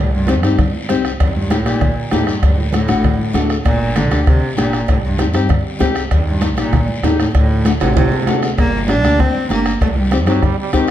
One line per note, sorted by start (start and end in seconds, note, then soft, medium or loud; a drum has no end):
0.00 0.42 C2 loud
0.00 0.13 A2 medium
0.14 0.42 G2 medium
0.27 0.33 C4 medium
0.27 0.33 D#4 medium
0.27 0.34 G4 medium
0.27 bombo rim medium
0.27 cowbell medium
0.27 high conga medium
0.27 short guiro medium
0.42 0.55 G2 loud
0.42 0.59 C4 medium
0.42 0.59 D#4 medium
0.42 0.60 G4 medium
0.42 bombo rim medium
0.42 short guiro medium
0.58 0.71 G2 medium
0.58 bombo low medium
0.58 bombo rim medium
0.58 cowbell medium
0.58 high conga soft
0.58 low conga medium
0.58 long guiro medium
0.74 high conga medium
0.89 1.13 C2 medium
0.89 1.10 C4 medium
0.89 1.11 D#4 medium
0.89 1.11 G4 medium
0.89 bombo rim medium
0.89 cowbell medium
0.89 high conga medium
0.89 short guiro medium
1.05 bombo rim medium
1.05 short guiro medium
1.20 1.66 D#2 loud
1.20 1.34 F#2 medium
1.20 bombo low medium
1.20 bombo rim medium
1.20 cowbell loud
1.20 high conga soft
1.20 long guiro medium
1.36 1.52 G2 medium
1.36 high conga medium
1.50 1.68 A2 medium
1.50 1.56 A#3 medium
1.50 1.56 D#4 medium
1.50 1.56 G4 medium
1.50 bombo rim medium
1.50 cowbell medium
1.50 high conga loud
1.50 short guiro medium
1.66 1.78 A#1 medium
1.66 1.97 A#2 medium
1.66 1.82 A#3 medium
1.66 1.82 D#4 medium
1.66 1.82 G4 medium
1.66 bombo rim medium
1.66 short guiro medium
1.81 1.94 A#1 medium
1.81 bombo low medium
1.81 bombo rim medium
1.81 cowbell medium
1.81 high conga soft
1.81 low conga medium
1.81 long guiro medium
2.11 2.37 D#2 medium
2.11 2.28 A2 medium
2.11 2.33 A#3 medium
2.11 2.33 D#4 medium
2.11 2.33 G4 medium
2.11 bombo rim medium
2.11 cowbell medium
2.11 high conga medium
2.11 low timbale medium
2.11 short guiro medium
2.27 2.45 G2 medium
2.27 bombo rim medium
2.27 short guiro medium
2.43 2.90 D2 loud
2.43 2.60 F#2 medium
2.43 bombo low medium
2.43 bombo rim medium
2.43 cowbell medium
2.43 high conga soft
2.43 long guiro medium
2.58 2.72 A2 medium
2.58 high conga medium
2.73 3.46 A2 medium
2.73 2.79 A3 medium
2.73 2.79 D4 medium
2.73 2.79 F#4 medium
2.73 bombo rim medium
2.73 cowbell medium
2.73 high conga medium
2.73 short guiro medium
2.88 3.01 A1 medium
2.88 3.04 A3 medium
2.88 3.05 D4 medium
2.88 3.05 F#4 medium
2.88 bombo rim medium
2.88 short guiro medium
3.04 3.16 A1 medium
3.04 bombo low medium
3.04 bombo rim medium
3.04 cowbell medium
3.04 high conga soft
3.04 low conga medium
3.04 long guiro medium
3.19 high conga medium
3.33 3.59 D2 medium
3.33 3.55 A3 medium
3.33 3.56 D4 medium
3.33 3.56 F#4 medium
3.33 bombo rim medium
3.33 cowbell medium
3.33 high conga medium
3.33 low timbale medium
3.33 short guiro medium
3.50 bombo rim medium
3.50 short guiro medium
3.64 4.12 G1 loud
3.64 3.97 A#2 loud
3.64 bombo low medium
3.64 bombo rim medium
3.64 cowbell medium
3.64 high conga soft
3.64 long guiro medium
3.96 4.26 D3 loud
3.96 4.02 A#3 medium
3.96 4.02 D4 medium
3.96 4.02 G4 medium
3.96 bombo rim medium
3.96 cowbell medium
3.96 high conga medium
3.96 short guiro medium
4.11 4.24 D2 medium
4.11 4.27 A#3 medium
4.11 4.27 D4 medium
4.11 4.28 G4 medium
4.11 bombo rim medium
4.11 short guiro medium
4.27 4.39 D2 medium
4.27 4.56 C3 loud
4.27 bombo low medium
4.27 bombo rim medium
4.27 cowbell medium
4.27 high conga soft
4.27 low conga medium
4.27 long guiro medium
4.57 4.82 G1 medium
4.57 4.86 A#2 medium
4.57 4.79 A#3 medium
4.57 4.79 D4 medium
4.57 4.79 G4 medium
4.57 bombo rim medium
4.57 cowbell medium
4.57 high conga medium
4.57 short guiro medium
4.73 bombo rim medium
4.73 short guiro medium
4.88 5.35 C2 loud
4.88 4.96 A2 medium
4.88 bombo low medium
4.88 bombo rim medium
4.88 cowbell medium
4.88 high conga soft
4.88 long guiro medium
5.05 5.33 G2 medium
5.18 5.24 C4 medium
5.18 5.24 D#4 medium
5.18 5.25 G4 medium
5.18 bombo rim medium
5.18 cowbell medium
5.18 high conga loud
5.18 short guiro medium
5.33 5.47 G2 medium
5.33 5.50 C4 medium
5.33 5.50 D#4 medium
5.33 5.50 G4 medium
5.33 bombo rim medium
5.33 short guiro medium
5.49 5.62 G2 medium
5.49 bombo low medium
5.49 bombo rim medium
5.49 cowbell medium
5.49 high conga soft
5.49 low conga medium
5.49 long guiro medium
5.79 6.05 C2 medium
5.79 6.01 C4 medium
5.79 6.02 D#4 medium
5.79 6.02 G4 loud
5.79 bombo low medium
5.79 bombo rim medium
5.79 cowbell medium
5.79 high conga medium
5.79 low timbale medium
5.79 short guiro medium
5.95 bombo rim medium
5.95 short guiro medium
6.10 6.57 D#2 loud
6.10 6.19 F#2 medium
6.10 bombo low medium
6.10 bombo rim medium
6.10 cowbell medium
6.10 high conga soft
6.10 long guiro medium
6.28 6.56 G2 medium
6.41 6.47 A#3 medium
6.41 6.47 D#4 medium
6.41 6.48 G4 medium
6.41 bombo rim medium
6.41 cowbell medium
6.41 high conga loud
6.41 short guiro medium
6.57 6.69 A#1 medium
6.57 6.86 A#2 medium
6.57 6.74 A#3 medium
6.57 6.73 D#4 medium
6.57 6.74 G4 medium
6.57 bombo rim medium
6.57 short guiro medium
6.73 6.85 A#1 medium
6.73 bombo low medium
6.73 bombo rim medium
6.73 cowbell medium
6.73 high conga soft
6.73 low conga medium
6.73 long guiro medium
6.88 high conga medium
7.03 7.28 D#2 medium
7.03 7.11 A2 medium
7.03 7.25 A#3 medium
7.03 7.25 D#4 medium
7.03 7.26 G4 medium
7.03 bombo rim medium
7.03 cowbell medium
7.03 high conga medium
7.03 low timbale medium
7.03 short guiro medium
7.19 7.34 A2 medium
7.19 bombo rim medium
7.19 short guiro medium
7.34 7.82 D2 loud
7.34 7.78 A2 loud
7.34 bombo low medium
7.34 bombo rim medium
7.34 cowbell loud
7.34 high conga soft
7.34 long guiro medium
7.65 7.71 A3 medium
7.65 7.71 D4 medium
7.65 7.71 F#4 medium
7.65 bombo rim medium
7.65 cowbell medium
7.65 high conga medium
7.65 short guiro medium
7.80 7.93 A1 medium
7.80 7.95 C3 loud
7.80 7.97 A3 medium
7.80 7.97 D4 medium
7.80 7.98 F#4 medium
7.80 bombo rim medium
7.80 high timbale medium
7.80 short guiro medium
7.96 8.09 A1 loud
7.96 8.25 C3 loud
7.96 bombo low medium
7.96 bombo rim medium
7.96 cowbell medium
7.96 high conga soft
7.96 low conga medium
7.96 high timbale medium
7.96 long guiro medium
8.11 high conga medium
8.11 low timbale medium
8.26 8.52 D2 medium
8.26 8.49 A3 medium
8.26 8.49 D4 medium
8.26 8.49 F#4 medium
8.26 bombo rim medium
8.26 cowbell medium
8.26 high conga medium
8.26 low timbale medium
8.26 short guiro medium
8.42 bombo rim medium
8.42 low timbale medium
8.42 short guiro medium
8.57 9.04 G1 loud
8.57 8.86 A#3 loud
8.57 bombo low medium
8.57 bombo rim medium
8.57 cowbell medium
8.57 high conga soft
8.57 long guiro medium
8.88 8.94 A#3 medium
8.88 9.21 D4 loud
8.88 8.94 D4 medium
8.88 8.94 G4 medium
8.88 bombo rim medium
8.88 high conga loud
8.88 short guiro medium
9.04 9.16 D2 medium
9.04 9.20 A#3 medium
9.04 9.20 D4 medium
9.04 9.20 G4 medium
9.04 bombo rim medium
9.04 short guiro medium
9.19 9.32 D2 medium
9.19 9.50 C4 loud
9.19 bombo low medium
9.19 bombo rim medium
9.19 cowbell medium
9.19 high conga soft
9.19 low conga medium
9.19 long guiro medium
9.35 high conga medium
9.49 9.75 G1 medium
9.49 9.71 A#3 medium
9.49 9.79 A#3 medium
9.49 9.72 D4 medium
9.49 9.72 G4 medium
9.49 bombo rim medium
9.49 high conga medium
9.49 short guiro medium
9.66 bombo rim medium
9.66 short guiro medium
9.81 10.26 C2 loud
9.81 9.88 A3 medium
9.81 bombo low medium
9.81 bombo rim medium
9.81 cowbell loud
9.81 high conga soft
9.81 long guiro medium
9.96 10.26 G3 medium
9.96 high conga medium
10.11 10.17 C4 medium
10.11 10.17 D#4 medium
10.11 10.18 G4 medium
10.11 bombo rim medium
10.11 high conga medium
10.11 short guiro medium
10.26 10.39 G2 medium
10.26 10.44 F#3 loud
10.26 10.43 C4 medium
10.26 10.43 D#4 medium
10.26 10.43 G4 medium
10.26 bombo rim medium
10.26 short guiro medium
10.42 10.55 G2 medium
10.42 10.58 G3 loud
10.42 bombo low medium
10.42 bombo rim medium
10.42 cowbell medium
10.42 high conga soft
10.42 low conga medium
10.42 long guiro medium
10.60 10.73 G3 loud
10.73 10.91 C2 medium
10.73 10.91 D#3 medium
10.73 10.91 C4 medium
10.73 10.91 D#4 medium
10.73 10.91 G4 loud
10.73 bombo low medium
10.73 bombo rim medium
10.73 high conga medium
10.73 short guiro medium
10.88 short guiro medium